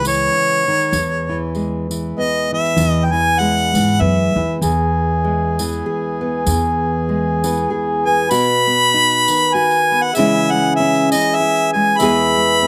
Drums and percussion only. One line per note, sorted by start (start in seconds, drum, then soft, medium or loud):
0.05 tambourine loud
0.80 tambourine soft
0.93 tambourine medium
1.55 tambourine soft
1.91 tambourine medium
2.65 tambourine soft
2.77 tambourine medium
3.39 tambourine soft
3.57 tambourine soft
3.75 tambourine medium
3.88 tambourine soft
4.62 tambourine medium
5.59 tambourine medium
5.73 tambourine soft
6.47 tambourine loud
7.44 tambourine loud
7.57 tambourine soft
8.31 tambourine loud
9.10 tambourine soft
9.28 tambourine loud
9.71 tambourine soft
10.15 tambourine loud
10.94 tambourine soft
11.12 tambourine loud
11.56 tambourine soft
12.00 tambourine medium